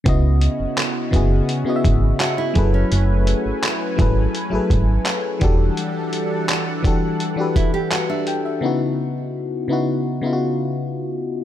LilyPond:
<<
  \new Staff \with { instrumentName = "FM electric piano" } { \time 4/4 \key cis \minor \tempo 4 = 84 << { r1 | r1 | r2. r16 e''16 g''16 e''16~ | e''16 r2. r8. | } \\ { <cis b e' fis' dis''>4~ <cis b e' fis' dis''>16 r16 <cis b e' fis' gis'>8. <cis b e' fis' dis'' e''>4~ <cis b e' fis' dis'' e''>16 <fis e' gis' a' b'>8~ | <fis e' gis' a' b'>4~ <fis e' gis' a' b'>16 r16 <fis e' gis' a' b'>8. <fis e' gis' a' b'>4~ <fis e' gis' a' b'>16 <e d' fis' g' a'>8~ | <e d' fis' g' a'>4~ <e d' fis' g' a'>16 r16 <e d' fis' g' a'>8. <e d' fis' g' b'>4. r16 | <cis b dis' e' fis'>4~ <cis b dis' e' fis'>16 r16 <cis b dis' e' fis'>8. <cis b dis' e' eis' fis'>4. r16 | } >> }
  \new Staff \with { instrumentName = "Nylon-string guitar" } { \time 4/4 \key cis \minor r2. fis'16 e'8 cis'16~ | cis'4~ cis'16 r2 r8. | r2 r8 e'16 g'16 fis'16 d'8. | r1 | }
  \new Staff \with { instrumentName = "Analog synth pad" } { \time 4/4 \key cis \minor <cis b cis' e' fis'>2.~ <cis b cis' e' fis'>8 <fis a cis' b' gis''>8~ | <fis a cis' b' gis''>2.~ <fis a cis' b' gis''>8 <e g d' a' fis''>8~ | <e g d' a' fis''>1 | r1 | }
  \new Staff \with { instrumentName = "FM bass" } { \clef bass \time 4/4 \key cis \minor cis,8. fis,,16 r8 fis,,8 r8 gis,,8 r8 fis,,8 | fis,,8. gis,,16 r8 gis,,8 r16 gis,,16 gis,,8 r8 e,,8 | r1 | r1 | }
  \new DrumStaff \with { instrumentName = "Drums" } \drummode { \time 4/4 <hh bd>8 hh8 <hc hh>8 <hh bd>8 hh8 <hh bd>8 <hc hh>8 <hh bd>8 | hh8 hh8 <hc hh>8 <hh bd>8 hh8 <hh bd>8 <hc hh>8 <hh bd>8 | hh8 hh8 <hc hh>8 <hh bd>8 hh8 <hh bd>8 <hc hh>8 hh8 | r4 r4 r4 r4 | }
>>